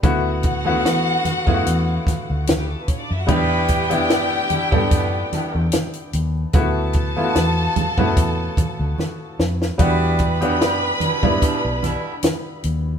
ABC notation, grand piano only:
X:1
M:4/4
L:1/16
Q:"Swing 16ths" 1/4=74
K:Em
V:1 name="Grand piano"
[A,B,EF]2 z [A,B,EF]3 z [A,B,E=F^F]6 z3 | [G,B,DG]2 z [B,DEG]3 z [B,DGA]6 z3 | [A,B,EF]2 z [A,B,E=F^F]3 z [A,B,EF]6 z3 | [G,B,DF]2 z [B,DFG]3 z [G,B,DE]6 z3 |]